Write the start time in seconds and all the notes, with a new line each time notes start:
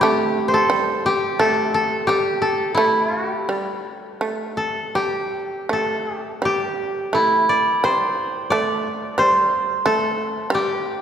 Already playing: G3 A3 C4 D4 E4
0.01 A3 G4
0.48 C5
0.54 A4
0.70 G3
1.06 G4
1.39 A3 A4
1.74 A4
2.07 G3 G4
2.42 A4
2.75 A3 E4
3.04 F4
3.17 F#4
3.31 G4
3.49 G3
4.21 A3
4.57 A4
4.95 G3 G4
5.69 A3 A4
6.16 G4
6.42 G3 G4
7.13 A3 E4
7.49 D5
7.84 G3 C5
8.50 A3 D5
9.18 G3 C5
9.86 A3 A4
10.50 G3
10.55 G4